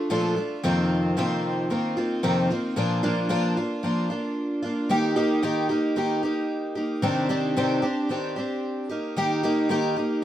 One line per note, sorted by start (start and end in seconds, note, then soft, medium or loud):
0.10 0.37 A#2 medium
0.10 0.37 F3 medium
0.10 0.37 A3 medium
0.10 0.36 D4 medium
0.10 0.35 F4 medium
0.36 0.64 A3 soft
0.36 0.64 D4 soft
0.36 0.63 F4 medium
0.64 1.16 F2 medium
0.64 1.16 C3 medium
0.64 1.17 D#3 medium
0.64 1.18 A#3 medium
0.64 1.17 C4 medium
0.64 1.18 F4 medium
1.17 1.70 F2 medium
1.17 1.71 C3 medium
1.17 1.69 D#3 medium
1.17 1.70 A#3 medium
1.17 1.70 C4 medium
1.17 1.72 F4 medium
1.70 1.97 D#3 medium
1.70 1.97 A#3 medium
1.70 1.97 C4 medium
1.70 1.96 F4 medium
1.97 2.23 D#3 soft
1.97 2.23 A#3 medium
1.97 2.23 C4 medium
1.97 2.23 F4 medium
2.23 2.50 F2 medium
2.23 2.50 C3 medium
2.23 2.50 D#3 medium
2.23 2.51 A#3 medium
2.23 2.50 C4 loud
2.23 2.49 F4 medium
2.50 2.76 D#3 soft
2.50 2.76 A#3 soft
2.50 2.77 C4 medium
2.50 2.77 F4 medium
2.76 3.03 A#2 medium
2.76 3.03 F3 medium
2.76 3.03 A#3 medium
2.76 3.02 D4 loud
2.76 3.02 F4 medium
3.03 3.28 A#2 medium
3.03 3.28 F3 medium
3.03 3.29 A#3 medium
3.03 3.29 D4 medium
3.03 3.29 F4 medium
3.29 3.56 A#2 medium
3.29 3.57 F3 medium
3.29 3.57 A#3 medium
3.29 3.57 D4 loud
3.29 3.56 F4 medium
3.57 3.83 A#3 soft
3.57 3.83 D4 medium
3.57 3.84 F4 medium
3.83 4.10 F3 medium
3.83 4.10 A#3 medium
3.83 4.10 D4 medium
3.83 4.09 F4 medium
4.10 4.65 A#3 soft
4.10 4.63 D4 medium
4.10 4.61 F4 medium
4.63 4.89 A#3 soft
4.63 4.90 D4 soft
4.63 4.90 F4 medium
4.89 5.16 D#3 medium
4.89 5.16 A#3 medium
4.89 5.15 D#4 loud
4.89 5.15 G4 loud
5.16 5.41 D#3 medium
5.16 5.42 A#3 medium
5.16 5.43 D#4 medium
5.16 5.43 G4 medium
5.43 5.70 D#3 medium
5.43 5.70 A#3 loud
5.43 5.69 D#4 medium
5.43 5.68 G4 medium
5.69 5.95 A#3 medium
5.69 5.96 D#4 medium
5.69 5.96 G4 medium
5.96 6.23 D#3 medium
5.96 6.23 A#3 medium
5.96 6.23 D#4 medium
5.96 6.22 G4 medium
6.23 6.77 A#3 soft
6.23 6.77 D#4 medium
6.23 6.75 G4 medium
6.75 7.03 A#3 soft
6.75 7.03 D#4 medium
6.75 7.02 G4 medium
7.02 7.29 C3 medium
7.02 7.29 D#3 medium
7.02 7.29 C4 medium
7.02 7.29 D4 medium
7.02 7.28 G4 medium
7.29 7.55 C3 medium
7.29 7.56 D#3 medium
7.29 7.56 C4 medium
7.29 7.57 D4 medium
7.29 7.56 G4 medium
7.57 7.83 C3 medium
7.57 7.83 D#3 medium
7.57 7.83 C4 medium
7.57 7.82 D4 loud
7.57 7.81 G4 medium
7.82 8.09 C4 soft
7.82 8.10 D4 medium
7.82 8.09 G4 medium
8.09 8.36 D#3 medium
8.09 8.37 C4 medium
8.09 8.37 D4 medium
8.09 8.35 G4 medium
8.36 8.91 C4 medium
8.36 8.90 D4 soft
8.36 8.89 G4 medium
8.90 9.16 A#3 medium
8.90 9.16 D#4 medium
8.90 9.16 G4 medium
9.17 9.43 D#3 medium
9.17 9.43 A#3 loud
9.17 9.43 D#4 loud
9.17 9.42 G4 loud
9.43 9.68 D#3 medium
9.43 9.69 A#3 medium
9.43 9.69 D#4 medium
9.43 9.70 G4 medium
9.69 9.96 D#3 medium
9.69 9.96 A#3 medium
9.69 9.97 D#4 medium
9.69 9.95 G4 medium
9.96 10.22 A#3 soft
9.96 10.22 D#4 soft
9.96 10.23 G4 medium